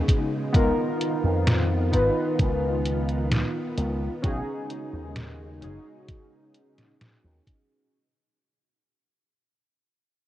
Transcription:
Already playing: C#3 G#3 B3 C#4 D#4 F#4 G#4
0.08 kick, closed hi-hat
0.53 C#2 D#3 B3 D#4 F4 A#4, kick, closed hi-hat
1.01 closed hi-hat
1.24 F2
1.47 snare, closed hi-hat
1.92 G#1 B3 D#4 F4 B4, kick, closed hi-hat
2.39 C#2, kick, closed hi-hat
2.85 closed hi-hat
3.09 closed hi-hat
3.32 snare, closed hi-hat
3.77 C#2, closed hi-hat
4.22 B1 C#3 G#3 C#4 D#4 F#4 G#4, kick, closed hi-hat
4.70 closed hi-hat
4.93 D#2
5.16 snare, closed hi-hat
5.61 F#1 C#4 D#4 F#4 G#4, closed hi-hat
6.08 kick, closed hi-hat
6.55 closed hi-hat
6.78 snare, closed hi-hat
7.01 snare, closed hi-hat
7.24 D#2
7.47 kick, closed hi-hat

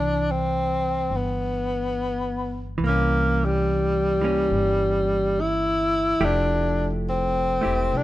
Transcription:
Already playing: C2 E3 D4
0.31 C4
1.10 G1
1.16 B3
2.78 C2 E3
2.84 A#3
2.89 C#4
3.45 G3
4.21 E3 A#3 C#4
4.50 G1
5.41 E4
6.20 F1 F3 A3 E4 G4
6.24 D4
7.09 C4
7.61 E1 A3 E4 G4
7.91 C2
7.97 D4

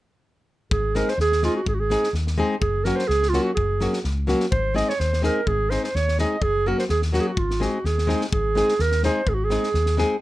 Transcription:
0.71 G#1 G#4, kick
0.95 G#3 C4 D#4 G#4 A#4, snare
1.08 C5, snare
1.18 D#2 G#4, snare
1.32 snare
1.43 G#3 C4 D#4 F4 G#4, snare
1.56 F#4
1.66 G#1 G#4, kick
1.74 F#4
1.80 G#4
1.90 G#3 C4 D#4 G#4, snare
2.04 snare
2.13 D#2, snare
2.27 snare
2.38 G#3 C4 D#4 G#4
2.61 F#1 G#4, kick
2.84 F#3 A#3 C#4 F#4 A#4, snare
2.96 C5, snare
3.07 C#2 G#4, snare
3.23 snare
3.29 F#3 F4, snare
3.34 A#3 C#4 F#4
3.43 F#4
3.54 F#1 G#4, kick
3.80 F#3 A#3 C#4 F#4, snare
3.93 snare
4.04 C#2, snare
4.27 F#3 A#3 C#4 F#4, snare
4.40 snare
4.51 G#1 C5, kick
4.74 G#3 C4 D#4 G#4 D#5, snare
4.89 C#5, snare
5.00 D#2 C5, snare
5.13 snare
5.22 G#3 C4 D#4 G#4 A#4, snare
5.47 G#1 G#4, kick
5.70 G#3 C4 D#4 G#4 C5, snare
5.84 C5, snare
5.95 D#2 C#5, snare
6.08 snare
6.19 G#3 C4 D#4 G#4 D#5, snare
6.42 F#1 G#4, kick
6.66 F#3 A#3 C#4 F#4 A#4
6.79 C5, snare
6.89 D#2 G#4, snare
7.02 snare
7.13 F#3 A#3 C#4 F#4, snare
7.21 G#4
7.28 F#4
7.36 G#1 F4, kick
7.51 snare
7.60 G#3 C4 D#4 F#4 G#4, snare
7.84 D#2 G#4, snare
7.98 snare
8.07 G#3 C4 D#4 G#4, snare
8.21 snare
8.32 G#1 G#4, kick
8.55 G#3 C4 D#4 G#4, snare
8.69 snare
8.79 D#2 A#4, snare
8.92 snare
9.03 G#3 C4 D#4 G#4 C5, snare
9.27 G#1 G#4, kick
9.34 F#4
9.44 G#4
9.50 G#3 C4 D#4 G#4, snare
9.63 snare
9.74 D#2, snare
9.86 snare
9.97 G#3 C4 D#4 G#4, snare

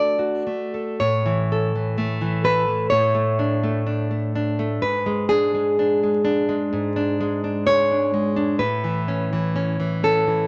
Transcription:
Already playing: A3 D4 F#4 A4 D5
0.19 F#4
0.47 A3
0.74 A4
1.00 A2 C#5
1.26 E3
1.52 A4
1.75 E3
1.98 A3
2.21 E3
2.44 A4 B4
2.90 A2 C#5
3.15 A3
3.39 D4
3.63 A3
3.86 D4
4.11 A3
4.35 D4
4.59 A3
4.82 G#2 B4
5.06 G#3
5.29 D4 G#4
5.54 G#3
5.79 D4
6.03 G#3
6.25 D4
6.49 G#3
6.73 G#2
6.96 D4
7.21 G#3
7.44 D4
7.67 G#3 C#5
7.91 D4
8.14 G#3
8.36 D4
8.59 A2 B4
8.84 E3
9.08 C#4
9.33 E3
9.56 C#4
9.80 E3
10.03 C#4 A4
10.27 E3

